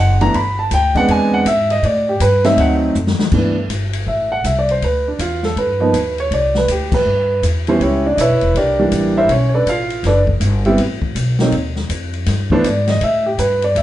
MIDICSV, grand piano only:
0, 0, Header, 1, 2, 480
1, 0, Start_track
1, 0, Key_signature, 1, "major"
1, 0, Tempo, 372671
1, 437, Time_signature, 4, 2, 24, 8
1, 17808, End_track
2, 0, Start_track
2, 0, Title_t, "Grand piano"
2, 0, Program_c, 0, 0
2, 0, Note_on_c, 0, 78, 85
2, 272, Note_on_c, 0, 52, 64
2, 272, Note_on_c, 0, 59, 57
2, 273, Note_off_c, 0, 78, 0
2, 275, Note_on_c, 0, 57, 60
2, 277, Note_on_c, 0, 62, 73
2, 277, Note_on_c, 0, 82, 104
2, 424, Note_off_c, 0, 52, 0
2, 424, Note_off_c, 0, 59, 0
2, 425, Note_off_c, 0, 57, 0
2, 426, Note_off_c, 0, 62, 0
2, 439, Note_off_c, 0, 82, 0
2, 455, Note_on_c, 0, 83, 90
2, 743, Note_off_c, 0, 83, 0
2, 760, Note_on_c, 0, 81, 85
2, 920, Note_off_c, 0, 81, 0
2, 952, Note_on_c, 0, 79, 104
2, 1225, Note_on_c, 0, 56, 65
2, 1229, Note_on_c, 0, 59, 63
2, 1231, Note_on_c, 0, 62, 77
2, 1232, Note_off_c, 0, 79, 0
2, 1233, Note_on_c, 0, 60, 59
2, 1252, Note_on_c, 0, 78, 109
2, 1407, Note_off_c, 0, 78, 0
2, 1429, Note_on_c, 0, 80, 97
2, 1711, Note_off_c, 0, 80, 0
2, 1724, Note_on_c, 0, 78, 94
2, 1843, Note_off_c, 0, 56, 0
2, 1845, Note_off_c, 0, 59, 0
2, 1846, Note_off_c, 0, 62, 0
2, 1847, Note_off_c, 0, 60, 0
2, 1883, Note_off_c, 0, 78, 0
2, 1894, Note_on_c, 0, 76, 99
2, 2183, Note_off_c, 0, 76, 0
2, 2204, Note_on_c, 0, 75, 96
2, 2363, Note_off_c, 0, 75, 0
2, 2382, Note_on_c, 0, 74, 75
2, 2667, Note_off_c, 0, 74, 0
2, 2693, Note_on_c, 0, 67, 71
2, 2848, Note_off_c, 0, 67, 0
2, 2853, Note_on_c, 0, 71, 90
2, 3143, Note_off_c, 0, 71, 0
2, 3149, Note_on_c, 0, 54, 73
2, 3151, Note_on_c, 0, 57, 75
2, 3153, Note_on_c, 0, 63, 81
2, 3156, Note_on_c, 0, 60, 68
2, 3160, Note_on_c, 0, 76, 106
2, 3321, Note_off_c, 0, 76, 0
2, 3347, Note_on_c, 0, 78, 86
2, 3522, Note_off_c, 0, 78, 0
2, 3766, Note_off_c, 0, 54, 0
2, 3768, Note_off_c, 0, 57, 0
2, 3768, Note_off_c, 0, 63, 0
2, 3770, Note_off_c, 0, 60, 0
2, 4297, Note_on_c, 0, 52, 57
2, 4297, Note_on_c, 0, 59, 50
2, 4298, Note_on_c, 0, 57, 50
2, 4305, Note_on_c, 0, 62, 67
2, 4564, Note_off_c, 0, 52, 0
2, 4564, Note_off_c, 0, 59, 0
2, 4565, Note_off_c, 0, 57, 0
2, 4568, Note_off_c, 0, 62, 0
2, 5254, Note_on_c, 0, 76, 66
2, 5545, Note_off_c, 0, 76, 0
2, 5562, Note_on_c, 0, 78, 85
2, 5724, Note_off_c, 0, 78, 0
2, 5741, Note_on_c, 0, 76, 66
2, 5887, Note_off_c, 0, 76, 0
2, 5907, Note_on_c, 0, 74, 72
2, 6050, Note_off_c, 0, 74, 0
2, 6069, Note_on_c, 0, 72, 69
2, 6211, Note_off_c, 0, 72, 0
2, 6238, Note_on_c, 0, 71, 63
2, 6519, Note_off_c, 0, 71, 0
2, 6541, Note_on_c, 0, 62, 55
2, 6694, Note_off_c, 0, 62, 0
2, 6706, Note_on_c, 0, 65, 72
2, 6993, Note_off_c, 0, 65, 0
2, 7018, Note_on_c, 0, 69, 78
2, 7173, Note_off_c, 0, 69, 0
2, 7190, Note_on_c, 0, 71, 70
2, 7475, Note_on_c, 0, 53, 65
2, 7478, Note_on_c, 0, 58, 53
2, 7479, Note_on_c, 0, 63, 70
2, 7481, Note_on_c, 0, 59, 60
2, 7630, Note_off_c, 0, 53, 0
2, 7631, Note_off_c, 0, 58, 0
2, 7632, Note_off_c, 0, 59, 0
2, 7632, Note_off_c, 0, 63, 0
2, 7913, Note_off_c, 0, 71, 0
2, 7986, Note_on_c, 0, 73, 79
2, 8138, Note_off_c, 0, 73, 0
2, 8161, Note_on_c, 0, 74, 79
2, 8441, Note_off_c, 0, 74, 0
2, 8468, Note_on_c, 0, 71, 71
2, 8620, Note_off_c, 0, 71, 0
2, 8647, Note_on_c, 0, 67, 57
2, 8925, Note_off_c, 0, 67, 0
2, 8941, Note_on_c, 0, 71, 75
2, 9537, Note_off_c, 0, 71, 0
2, 9893, Note_on_c, 0, 52, 65
2, 9901, Note_on_c, 0, 59, 60
2, 9901, Note_on_c, 0, 76, 73
2, 9902, Note_on_c, 0, 61, 69
2, 9903, Note_on_c, 0, 55, 58
2, 9904, Note_on_c, 0, 64, 63
2, 9904, Note_on_c, 0, 71, 68
2, 9908, Note_on_c, 0, 72, 66
2, 10040, Note_off_c, 0, 52, 0
2, 10044, Note_off_c, 0, 59, 0
2, 10045, Note_off_c, 0, 55, 0
2, 10045, Note_off_c, 0, 61, 0
2, 10052, Note_off_c, 0, 64, 0
2, 10057, Note_off_c, 0, 76, 0
2, 10058, Note_off_c, 0, 71, 0
2, 10061, Note_off_c, 0, 72, 0
2, 10071, Note_on_c, 0, 73, 76
2, 10072, Note_on_c, 0, 64, 56
2, 10077, Note_on_c, 0, 67, 57
2, 10079, Note_on_c, 0, 61, 55
2, 10357, Note_off_c, 0, 73, 0
2, 10358, Note_off_c, 0, 64, 0
2, 10360, Note_off_c, 0, 67, 0
2, 10361, Note_off_c, 0, 61, 0
2, 10386, Note_on_c, 0, 74, 73
2, 10387, Note_on_c, 0, 62, 72
2, 10510, Note_on_c, 0, 75, 69
2, 10539, Note_off_c, 0, 74, 0
2, 10540, Note_off_c, 0, 62, 0
2, 10543, Note_off_c, 0, 75, 0
2, 10565, Note_on_c, 0, 76, 92
2, 10567, Note_on_c, 0, 73, 72
2, 10572, Note_on_c, 0, 64, 69
2, 10573, Note_on_c, 0, 71, 74
2, 10995, Note_off_c, 0, 76, 0
2, 10996, Note_off_c, 0, 73, 0
2, 10998, Note_off_c, 0, 64, 0
2, 10999, Note_off_c, 0, 71, 0
2, 11039, Note_on_c, 0, 74, 74
2, 11040, Note_on_c, 0, 70, 59
2, 11042, Note_on_c, 0, 67, 54
2, 11044, Note_on_c, 0, 62, 47
2, 11312, Note_off_c, 0, 62, 0
2, 11322, Note_off_c, 0, 70, 0
2, 11322, Note_off_c, 0, 74, 0
2, 11323, Note_off_c, 0, 67, 0
2, 11327, Note_on_c, 0, 52, 67
2, 11328, Note_on_c, 0, 55, 65
2, 11328, Note_on_c, 0, 58, 60
2, 11331, Note_on_c, 0, 62, 76
2, 11816, Note_on_c, 0, 76, 94
2, 11820, Note_on_c, 0, 64, 73
2, 11821, Note_on_c, 0, 72, 76
2, 11826, Note_on_c, 0, 70, 69
2, 11940, Note_off_c, 0, 52, 0
2, 11940, Note_off_c, 0, 55, 0
2, 11940, Note_off_c, 0, 58, 0
2, 11942, Note_off_c, 0, 62, 0
2, 11974, Note_off_c, 0, 76, 0
2, 11976, Note_off_c, 0, 64, 0
2, 11977, Note_off_c, 0, 72, 0
2, 11979, Note_off_c, 0, 70, 0
2, 11996, Note_on_c, 0, 73, 79
2, 11997, Note_on_c, 0, 61, 60
2, 12209, Note_off_c, 0, 73, 0
2, 12229, Note_on_c, 0, 73, 55
2, 12255, Note_off_c, 0, 73, 0
2, 12280, Note_off_c, 0, 61, 0
2, 12290, Note_on_c, 0, 74, 75
2, 12294, Note_on_c, 0, 62, 57
2, 12295, Note_on_c, 0, 69, 60
2, 12299, Note_on_c, 0, 71, 65
2, 12451, Note_off_c, 0, 74, 0
2, 12453, Note_off_c, 0, 62, 0
2, 12454, Note_off_c, 0, 69, 0
2, 12456, Note_off_c, 0, 71, 0
2, 12485, Note_on_c, 0, 77, 95
2, 12490, Note_on_c, 0, 65, 75
2, 12914, Note_off_c, 0, 77, 0
2, 12916, Note_off_c, 0, 65, 0
2, 12963, Note_on_c, 0, 71, 60
2, 12967, Note_on_c, 0, 62, 60
2, 12967, Note_on_c, 0, 74, 76
2, 12971, Note_on_c, 0, 69, 60
2, 13136, Note_off_c, 0, 71, 0
2, 13139, Note_off_c, 0, 62, 0
2, 13139, Note_off_c, 0, 74, 0
2, 13141, Note_off_c, 0, 69, 0
2, 13727, Note_on_c, 0, 55, 77
2, 13729, Note_on_c, 0, 64, 82
2, 13730, Note_on_c, 0, 60, 65
2, 13731, Note_on_c, 0, 59, 63
2, 13876, Note_off_c, 0, 55, 0
2, 13877, Note_off_c, 0, 64, 0
2, 13878, Note_off_c, 0, 59, 0
2, 13878, Note_off_c, 0, 60, 0
2, 14686, Note_on_c, 0, 54, 69
2, 14686, Note_on_c, 0, 58, 65
2, 14693, Note_on_c, 0, 60, 61
2, 14696, Note_on_c, 0, 63, 73
2, 14835, Note_off_c, 0, 54, 0
2, 14835, Note_off_c, 0, 58, 0
2, 14838, Note_off_c, 0, 60, 0
2, 14840, Note_off_c, 0, 63, 0
2, 16120, Note_on_c, 0, 52, 84
2, 16124, Note_on_c, 0, 57, 80
2, 16126, Note_on_c, 0, 59, 83
2, 16129, Note_on_c, 0, 62, 95
2, 16129, Note_on_c, 0, 72, 72
2, 16271, Note_off_c, 0, 52, 0
2, 16272, Note_off_c, 0, 57, 0
2, 16274, Note_off_c, 0, 59, 0
2, 16275, Note_off_c, 0, 62, 0
2, 16287, Note_off_c, 0, 72, 0
2, 16309, Note_on_c, 0, 74, 70
2, 16592, Note_off_c, 0, 74, 0
2, 16612, Note_on_c, 0, 75, 82
2, 16768, Note_off_c, 0, 75, 0
2, 16788, Note_on_c, 0, 76, 86
2, 17071, Note_off_c, 0, 76, 0
2, 17082, Note_on_c, 0, 67, 61
2, 17243, Note_off_c, 0, 67, 0
2, 17250, Note_on_c, 0, 71, 76
2, 17541, Note_off_c, 0, 71, 0
2, 17571, Note_on_c, 0, 74, 74
2, 17727, Note_off_c, 0, 74, 0
2, 17737, Note_on_c, 0, 76, 75
2, 17808, Note_off_c, 0, 76, 0
2, 17808, End_track
0, 0, End_of_file